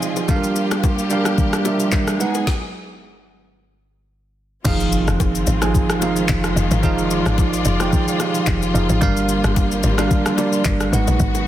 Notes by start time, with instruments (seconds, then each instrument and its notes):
Already playing: tine electric piano F3 D#4 G#4 D5 D#5 F5 G5, string section F3 G#3 C4 F4 G#4
0.02 shaker
0.16 high bongo, shaker
0.28 tine electric piano G3 D4 A4 F5, string section G3 A#3 G4, kick, low conga, shaker
0.36 tine electric piano A#4
0.44 shaker
0.56 shaker
0.71 cross-stick, low bongo, shaker
0.83 kick, high bongo, shaker
0.99 shaker
1.10 tine electric piano G3 D4 A#4 F5, shaker
1.25 cross-stick, low bongo, shaker
1.38 kick, low conga, shaker
1.53 cross-stick, shaker
1.65 tine electric piano G3 D4 A#4 E5, low bongo, shaker
1.80 shaker
1.92 kick, clap, high bongo, low conga, shaker
2.08 cross-stick, shaker
2.19 string section F#3 G#3 B3 D#4 G#4, tine electric piano G#3 D#4 B4 F#5, shaker
2.35 high bongo, shaker
2.47 kick, snare
4.64 log drum bass F1, string section D#3 F3 G#3 C4 F4, tine electric piano F3 D#4 G#4 F5, kick, crash, impact, low conga, shaker
4.80 shaker
4.92 shaker
5.08 log drum bass F1, cross-stick, shaker
5.20 kick, high bongo, shaker
5.35 shaker
5.47 log drum bass G#1, shaker
5.61 tine electric piano F3 D#4 G#4 G#5, cross-stick, low bongo, shaker
5.75 kick, low conga, shaker
5.90 cross-stick, shaker
6.01 tine electric piano F3 D#4 G#4 F5, low bongo, shaker
6.16 shaker
6.28 log drum bass F1, kick, clap, high bongo, low conga, shaker
6.44 cross-stick, shaker
6.56 log drum bass F1, shaker
6.71 log drum bass G#1, high bongo, shaker
6.83 log drum bass F1, tine electric piano F3 D#4 G#4 F5, string section D5, kick, low conga, shaker
6.98 shaker
7.11 shaker
7.26 log drum bass G#1, cross-stick, shaker
7.38 kick, high bongo, shaker
7.53 shaker
7.65 log drum bass F1, shaker
7.79 tine electric piano F3 D#4 G#4 G5, cross-stick, low bongo, shaker
7.92 kick, low conga, shaker
8.08 shaker
8.19 tine electric piano F3 D#4 G4 F5, cross-stick, low bongo, shaker
8.27 tine electric piano G#4
8.35 shaker
8.46 log drum bass F1, kick, clap, high bongo, low conga, shaker
8.62 shaker
8.74 log drum bass F1, tine electric piano F3 D#4 G#4 F5, shaker
8.89 log drum bass G#1, high bongo, shaker
9.01 log drum bass G1, string section D3 G3 A#3, tine electric piano G3 D4 A#4 F5, kick, low conga, shaker
9.17 shaker
9.29 shaker
9.44 log drum bass G1, cross-stick, shaker
9.56 kick, high bongo, shaker
9.72 shaker
9.83 log drum bass G#1, shaker
9.98 tine electric piano G3 D4 A#4 F5, cross-stick, low bongo, shaker
10.11 kick, low conga, shaker
10.26 cross-stick, shaker
10.37 tine electric piano G3 D4 A#4 D5, low bongo, shaker
10.53 shaker
10.65 log drum bass G1, kick, clap, high bongo, low conga, shaker
10.81 cross-stick, shaker
10.92 log drum bass G#1, string section D#3 F#3 G#3 B3 F#4, tine electric piano G#3 D#4 B4 F#5, shaker
11.07 log drum bass A#1, high bongo, shaker
11.20 log drum bass G#1, kick, low conga, shaker
11.35 high bongo, shaker